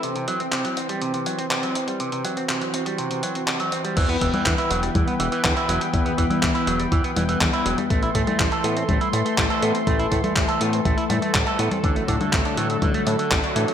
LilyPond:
<<
  \new Staff \with { instrumentName = "Analog synth pad" } { \time 4/4 \key e \minor \tempo 4 = 122 << { <e c' c''>1~ | <e c' c''>1 | <e b b'>1~ | <e b b'>1 |
<e a c'''>1~ | <e a c'''>1 | <d fis a>1 | } \\ { g''1 | fis'1 | g''1~ | g''1 |
a'1~ | a'1 | fis'1 | } >> }
  \new Staff \with { instrumentName = "Clean electric guitar" } { \clef bass \time 4/4 \key e \minor c16 c16 fis16 c'16 c16 fis16 c'16 g16 c16 c16 fis16 c'16 c16 fis16 c'16 g16 | c16 c16 fis16 c'16 c16 fis16 c'16 g16 c16 c16 fis16 c'16 c16 fis16 c'16 g16 | e16 b16 e16 e16 d16 e'16 fis16 g16 e16 b16 e16 e16 d16 e'16 fis16 g16 | e16 b16 e16 e16 d16 e'16 fis16 g16 e16 b16 e16 e16 d16 e'16 fis16 g16 |
a16 e'16 a16 a16 g16 a'16 b16 c'16 a16 e'16 a16 a16 g16 a'16 b16 c'16 | a16 e'16 a16 a16 g16 a'16 b16 c'16 a16 e'16 a16 a16 g16 a'16 b16 c'16 | d16 a16 d16 d16 c16 d'16 e16 fis16 d16 a16 d16 d16 c16 d'16 e16 fis16 | }
  \new Staff \with { instrumentName = "Analog synth bass" } { \clef bass \time 4/4 \key e \minor r1 | r1 | e,8 e,,8 e,8 e,,8 e,8 e,,8 e,8 e,,8 | e,8 e,,8 e,8 e,,8 e,8 e,,8 e,8 e,,8 |
a,,8 a,8 a,,8 a,8 a,,8 a,8 a,,8 a,8 | a,,8 a,8 a,,8 a,8 a,,8 a,8 a,,8 a,8 | a,,8 a,8 a,,8 a,8 a,,8 a,8 a,,8 a,8 | }
  \new DrumStaff \with { instrumentName = "Drums" } \drummode { \time 4/4 hh16 hh16 hh16 hh16 <hc hh>16 hh16 hh16 hh16 hh16 hh16 hh16 hh16 <hc hh>16 hh16 hh16 hh16 | hh16 hh16 hh16 hh16 <hc hh>16 hh16 hh16 hh16 hh16 hh16 hh16 hh16 <hc hh>16 hh16 hh16 hh16 | <cymc hh bd>16 hh16 <hh bd>16 <cgho hh>16 <hc hh bd>16 hh16 hh16 hh16 <cgho hh bd>16 hh16 hh16 hh16 <hc hh bd>16 hh16 hh16 hh16 | <hh bd>16 hh16 <hh bd>16 <cgho hh>16 <hc hh bd>16 hh16 hh16 hh16 <hh bd>16 hh16 <cgho hh>16 hh16 <hc cgho hh bd>16 hh16 hh16 <cgho hh>16 |
<hh bd>16 hh16 <hh bd>16 <cgho hh>16 <hc hh bd>16 hh16 hh16 hh16 <cgho hh bd>16 hh16 hh16 hh16 <hc hh bd>16 hh16 hh16 hh16 | <hh bd>16 hh16 <hh bd>16 <cgho hh>16 <hc hh bd>16 hh16 hh16 hh16 <hh bd>16 hh16 <cgho hh>16 hh16 <hc cgho hh bd>16 hh16 hh16 <cgho hh>16 | <hh bd>16 hh16 <hh bd>16 <cgho hh>16 <hc hh bd>16 hh16 hh16 hh16 <cgho hh bd>16 hh16 hh16 hh16 <hc hh bd>16 hh16 hh16 hh16 | }
>>